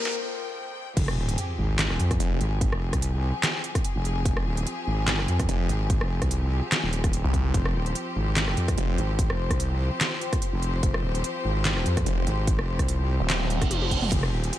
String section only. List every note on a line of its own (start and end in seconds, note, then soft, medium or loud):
0.00 0.93 F2 medium
0.00 0.93 F3 medium
0.00 0.93 C4 medium
0.00 0.93 G5 medium
0.97 14.59 F3 medium
0.97 14.59 C4 medium
0.97 14.59 G4 medium
0.97 7.53 G#4 medium
7.54 14.10 C5 medium
14.12 14.59 G#4 medium